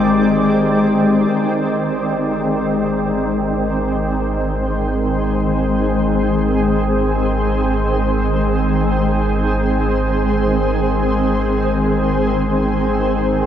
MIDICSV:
0, 0, Header, 1, 4, 480
1, 0, Start_track
1, 0, Tempo, 500000
1, 12923, End_track
2, 0, Start_track
2, 0, Title_t, "Ambient pad"
2, 0, Program_c, 0, 92
2, 0, Note_on_c, 0, 51, 67
2, 0, Note_on_c, 0, 56, 74
2, 0, Note_on_c, 0, 60, 67
2, 0, Note_on_c, 0, 67, 61
2, 0, Note_on_c, 0, 74, 65
2, 1260, Note_off_c, 0, 67, 0
2, 3086, Note_on_c, 0, 72, 72
2, 3186, Note_off_c, 0, 74, 0
2, 3899, Note_on_c, 0, 68, 73
2, 12923, Note_off_c, 0, 51, 0
2, 12923, Note_off_c, 0, 56, 0
2, 12923, Note_off_c, 0, 60, 0
2, 12923, Note_off_c, 0, 68, 0
2, 12923, Note_off_c, 0, 72, 0
2, 12923, End_track
3, 0, Start_track
3, 0, Title_t, "Synth drone"
3, 0, Program_c, 1, 95
3, 0, Note_on_c, 1, 56, 69
3, 1340, Note_off_c, 1, 56, 0
3, 12923, End_track
4, 0, Start_track
4, 0, Title_t, "Sub bass"
4, 0, Program_c, 2, 38
4, 0, Note_on_c, 2, 32, 75
4, 1205, Note_off_c, 2, 32, 0
4, 1245, Note_on_c, 2, 32, 76
4, 12923, Note_off_c, 2, 32, 0
4, 12923, End_track
0, 0, End_of_file